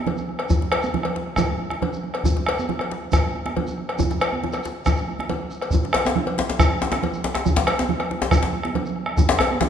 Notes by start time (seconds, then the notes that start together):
0.07 cowbell, djembe tone, low conga
0.17 shekere
0.29 bombo rim, high conga
0.39 bombo rim, cowbell, high conga
0.49 bombo low, high conga, djembe tone, low conga, djembe bass, shekere
0.62 djembe slap
0.72 bombo rim, cowbell, high conga
0.82 high conga, shekere
0.94 djembe tone, low conga
1.03 bombo rim, cowbell, djembe slap
1.16 djembe slap
1.26 bombo rim, high conga
1.36 bombo rim, bombo low, cowbell, djembe tone, low conga, djembe bass, shekere
1.60 high conga
1.70 bombo rim, djembe slap
1.82 cowbell, djembe tone, low conga
1.93 shekere
2.03 bombo rim, high conga
2.14 bombo rim, cowbell, high conga
2.24 bombo low, djembe tone, high conga, djembe bass, low conga, shekere
2.37 djembe slap
2.46 bombo rim, cowbell, high conga
2.59 high conga, shekere
2.69 djembe tone, low conga
2.79 bombo rim, cowbell, djembe slap
2.91 djembe slap
3.03 bombo rim, high conga
3.12 bombo rim, bombo low, cowbell, djembe tone, low conga, djembe bass, shekere
3.35 high conga
3.46 bombo rim, djembe slap, high conga
3.56 cowbell, djembe tone, low conga
3.67 shekere
3.78 bombo rim, high conga
3.89 bombo rim, cowbell, high conga
3.99 bombo low, djembe tone, low conga, djembe bass, shekere
4.10 bombo rim, djembe slap, high conga, shekere
4.21 bombo rim, cowbell, djembe slap, high conga, shekere
4.33 high conga
4.44 bombo rim, high conga, djembe tone, low conga
4.52 bombo rim, cowbell, djembe slap, high conga, shekere
4.64 djembe slap, shekere
4.86 bombo rim, bombo low, cowbell, djembe tone, low conga, djembe bass, shekere
4.96 djembe slap, shekere
5.08 bombo rim, djembe slap, high conga
5.19 bombo rim, djembe slap, high conga
5.29 bombo rim, cowbell, high conga, djembe tone, low conga
5.42 djembe slap
5.51 bombo rim, high conga, shekere
5.62 bombo rim, cowbell, high conga, shekere
5.71 bombo low, high conga, djembe tone, low conga, djembe bass, shekere
5.85 djembe slap
5.93 bombo rim, cowbell, djembe slap, high conga
6.05 djembe slap, high conga, shekere
6.16 djembe tone, low conga
6.27 cowbell, djembe slap
6.38 djembe slap
6.49 bombo rim, djembe slap, high conga
6.59 bombo rim, bombo low, cowbell, djembe tone, low conga, djembe bass, shekere
6.81 djembe slap, high conga
6.92 bombo rim, djembe slap, high conga
7.03 cowbell, djembe tone, low conga
7.14 shekere
7.24 bombo rim, djembe slap, high conga
7.35 bombo rim, djembe slap, high conga
7.46 bombo low, high conga, djembe tone, low conga, djembe bass, shekere
7.56 djembe slap
7.67 bombo rim, cowbell, high conga
7.79 djembe slap, high conga, shekere
7.89 djembe tone, low conga
8.00 bombo rim, cowbell, djembe slap
8.11 djembe slap
8.21 bombo rim, djembe slap, high conga
8.31 bombo rim, bombo low, cowbell, djembe tone, low conga, djembe bass, shekere
8.43 djembe slap
8.54 high conga
8.63 bombo rim, djembe slap, high conga
8.75 cowbell, djembe tone, low conga
8.86 shekere
8.96 bombo rim, high conga
9.06 bombo rim, high conga
9.17 bombo low, djembe tone, high conga, djembe bass, low conga, shekere
9.29 djembe slap
9.39 bombo rim, cowbell, djembe tone, high conga
9.51 high conga
9.61 djembe slap, djembe tone, low conga